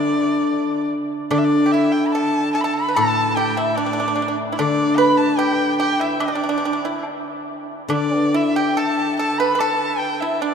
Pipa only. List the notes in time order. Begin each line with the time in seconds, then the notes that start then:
Already playing: D4
1.31 D4
1.66 G4
1.74 E4
2.15 A4
2.55 A4
2.64 A4
2.88 B4
2.96 A4
3.37 G4
3.57 E4
3.78 D4
3.86 D4
3.93 D4
4.00 D4
4.08 D4
4.16 D4
4.22 D4
4.28 D4
4.52 E4
4.59 D4
4.98 B4
5.39 G4
5.80 G4
6.01 E4
6.20 D4
6.28 D4
6.35 D4
6.43 D4
6.49 D4
6.58 D4
6.65 D4
6.73 D4
6.85 E4
7.90 D4
8.17 B3
8.34 E4
8.56 G4
8.77 A4
9.19 A4
9.40 B4
9.55 B4
9.60 A4
10.22 E4
10.42 D4